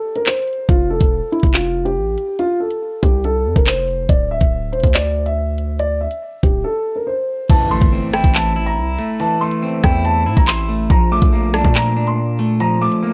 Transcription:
Already playing: grand piano A4
0.16 grand piano A#4, closed hi-hat
0.26 grand piano C5, clap
0.37 closed hi-hat
0.42 closed hi-hat
0.47 closed hi-hat
0.53 closed hi-hat
0.69 808-style bass F1, grand piano F4, kick, closed hi-hat
0.90 grand piano A4
1.00 808-style bass E1, kick, closed hi-hat
1.32 grand piano E4, closed hi-hat
1.40 808-style bass F1, kick, closed hi-hat
1.47 closed hi-hat
1.54 grand piano F4, clap, closed hi-hat
1.85 grand piano G4, closed hi-hat
1.96 808-style bass A1
2.18 closed hi-hat
2.39 grand piano F4, closed hi-hat
2.60 grand piano A4
2.71 closed hi-hat
3.02 808-style bass C2, grand piano G4, kick, closed hi-hat
3.24 grand piano A4, closed hi-hat
3.45 808-style bass F2
3.56 808-style bass F1, grand piano A#4, kick, closed hi-hat
3.67 grand piano C5, clap
3.77 closed hi-hat
3.88 open hi-hat
4.09 808-style bass D1, grand piano D5, kick, closed hi-hat
4.31 grand piano E5
4.41 808-style bass D1, kick, closed hi-hat
4.72 808-style bass E1, grand piano C5, closed hi-hat
4.80 808-style bass D2, kick, closed hi-hat
4.87 closed hi-hat
4.94 grand piano D5, clap, closed hi-hat
5.26 grand piano E5, closed hi-hat
5.58 closed hi-hat
5.79 grand piano D5, closed hi-hat
6.01 grand piano E5
6.11 closed hi-hat
6.43 808-style bass D1, grand piano G4, kick, closed hi-hat
6.64 grand piano A4
6.96 grand piano A#4
7.07 grand piano C5
7.50 808-style bass A1, clean electric guitar E3, grand piano A5, kick, closed hi-hat, crash, impact
7.71 clean electric guitar A3, grand piano C6
7.81 808-style bass G1, kick, closed hi-hat
7.92 clean electric guitar C4
8.13 clean electric guitar E4, grand piano G5, cross-stick, closed hi-hat
8.21 808-style bass A1, kick, closed hi-hat
8.28 closed hi-hat
8.34 grand piano A5, clap, closed hi-hat
8.56 clean electric guitar E4
8.66 grand piano A#5, closed hi-hat
8.77 808-style bass C2
8.99 clean electric guitar A3, closed hi-hat
9.20 clean electric guitar E3, grand piano A5, closed hi-hat
9.41 clean electric guitar A3, grand piano C6
9.51 closed hi-hat
9.62 clean electric guitar C4
9.84 808-style bass E2, clean electric guitar E4, grand piano G5, kick, cross-stick, closed hi-hat
10.05 grand piano A5, closed hi-hat
10.26 808-style bass A2, clean electric guitar E4
10.37 808-style bass A1, grand piano A#5, kick, closed hi-hat
10.47 grand piano C6, clap
10.58 closed hi-hat
10.69 clean electric guitar A3, open hi-hat
10.90 808-style bass A#1, clean electric guitar F3, grand piano A#5, kick, closed hi-hat
11.11 clean electric guitar A3, grand piano D6
11.22 808-style bass A#1, kick, closed hi-hat
11.33 clean electric guitar A#3
11.54 808-style bass C2, clean electric guitar D4, grand piano A5, cross-stick, closed hi-hat
11.61 808-style bass A#2, kick, closed hi-hat
11.68 closed hi-hat
11.75 grand piano A#5, clap, closed hi-hat
11.96 clean electric guitar D4
12.07 grand piano C6, closed hi-hat
12.39 clean electric guitar A3, closed hi-hat
12.60 clean electric guitar F3, grand piano A#5, closed hi-hat
12.81 clean electric guitar A3, grand piano D6
12.92 closed hi-hat
13.03 clean electric guitar A#3

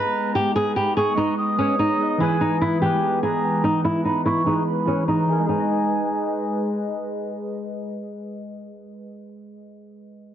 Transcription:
Already playing: synth keys G#3 B3 G#4 B4 D#5, analog synth pad G#3 B3 D#4, nylon-string guitar B4, flute A#5
0.35 nylon-string guitar G4
0.56 nylon-string guitar G#4
0.76 nylon-string guitar G4, flute B5
0.97 nylon-string guitar G#4, flute C#6
1.15 synth keys G#3 G#4 B4, nylon-string guitar D#4
1.20 synth keys D#5
1.38 flute D#6
1.56 synth keys G#3 G#4 B4, nylon-string guitar C#4
1.61 synth keys C#5
1.79 nylon-string guitar D#4
1.97 synth keys G#3 G#4 B4
2.03 synth keys D#5
2.18 synth keys E3 E4 G#4, analog synth pad E3 G#3 B3 B4, nylon-string guitar E4, flute G#5
2.23 synth keys B4
2.41 nylon-string guitar D#4
2.61 nylon-string guitar E4
2.80 synth keys E3 E4 G#4, nylon-string guitar G4
2.85 synth keys B4
2.89 synth keys E3 G#3 E4
2.94 synth keys B4
3.23 nylon-string guitar G#4, flute A#5
3.64 nylon-string guitar D#4
3.84 nylon-string guitar E4
4.05 nylon-string guitar D#4, flute B5
4.25 nylon-string guitar E4, flute C#6
4.44 synth keys E3 E4 G#4, nylon-string guitar D#4
4.49 synth keys B4
4.67 flute B5
4.85 synth keys E3 E4 G#4, nylon-string guitar C#4
4.90 synth keys B4
5.08 nylon-string guitar D#4, flute A#5
5.26 synth keys E3 E4 G#4, flute G#5
5.31 synth keys A#4
5.39 synth keys G#3
5.46 analog synth pad G#3 G#4 B4 D#5, nylon-string guitar D#4, synth keys G#4, flute G#5
5.52 synth keys B4
5.59 synth keys D#5

